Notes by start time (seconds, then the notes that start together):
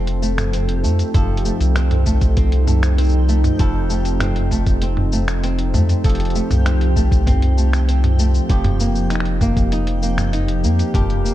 Already playing: F1 F2 F3 A3 C4 D#4 G4 A4 G5
0.07 closed hi-hat
0.22 A3, cabasa
0.38 finger snap, closed hi-hat, mid tom, cabasa
0.53 C4, closed hi-hat, cabasa
0.69 closed hi-hat
0.84 F2 A3, cabasa
0.99 closed hi-hat, cabasa
1.14 F1 F2 A4, kick, closed hi-hat, mid tom, cabasa
1.37 closed hi-hat
1.45 A3, cabasa
1.60 C2, closed hi-hat, cabasa
1.76 C4, finger snap, closed hi-hat, cabasa
1.91 closed hi-hat, mid tom
2.06 A3, kick, cabasa
2.21 kick, closed hi-hat, cabasa
2.37 C4, kick, closed hi-hat, cabasa
2.52 closed hi-hat
2.67 A3, mid tom, cabasa
2.83 finger snap, closed hi-hat, cabasa
2.98 C4, closed hi-hat, cabasa
3.01 cabasa
3.04 cabasa
3.06 cabasa
3.09 cabasa
3.11 cabasa
3.29 A3, cabasa
3.44 closed hi-hat, mid tom, cabasa
3.59 F1 F2 A4, kick, closed hi-hat, cabasa
3.90 A3, cabasa
4.05 closed hi-hat, cabasa
4.20 C4, finger snap, closed hi-hat, mid tom, cabasa
4.36 closed hi-hat
4.51 A3, kick, cabasa
4.66 kick, closed hi-hat, cabasa
4.82 C4, closed hi-hat, cabasa
4.97 mid tom
5.12 A3, cabasa
5.28 finger snap, closed hi-hat, cabasa
5.44 C4, closed hi-hat, cabasa
5.59 closed hi-hat
5.74 F2 A3, mid tom, cabasa
5.89 closed hi-hat, cabasa
6.04 F1 F2 A4, kick, closed hi-hat, cabasa
6.09 closed hi-hat
6.15 closed hi-hat
6.20 closed hi-hat
6.25 closed hi-hat
6.30 closed hi-hat
6.35 A3, cabasa
6.51 C2, closed hi-hat, mid tom, cabasa
6.66 C4, finger snap, closed hi-hat, cabasa
6.81 closed hi-hat
6.96 A3, kick, cabasa
7.12 kick, closed hi-hat, cabasa
7.27 C4, kick, closed hi-hat, mid tom, cabasa
7.42 closed hi-hat
7.58 A3, cabasa
7.73 finger snap, closed hi-hat, cabasa
7.88 C4, closed hi-hat, cabasa
8.04 closed hi-hat, mid tom
8.19 A3, cabasa
8.34 cabasa
8.49 F1 F2 G4, kick, closed hi-hat, cabasa
8.64 closed hi-hat, mid tom
8.80 A#3, cabasa
8.95 cabasa
9.10 D#4, finger snap, closed hi-hat, cabasa
9.16 finger snap
9.20 finger snap
9.25 closed hi-hat
9.41 A#3, kick, mid tom, cabasa
9.56 G4, kick, closed hi-hat, cabasa
9.72 D#4, closed hi-hat, cabasa
9.87 closed hi-hat
10.03 A#3, cabasa
10.13 A#4
10.18 finger snap, closed hi-hat, mid tom, cabasa
10.33 D#4, closed hi-hat, cabasa
10.48 closed hi-hat
10.64 F2 A#3, cabasa
10.79 closed hi-hat, cabasa
10.94 F1 F2 G4, kick, closed hi-hat, mid tom, cabasa
11.10 closed hi-hat
11.25 A#3, cabasa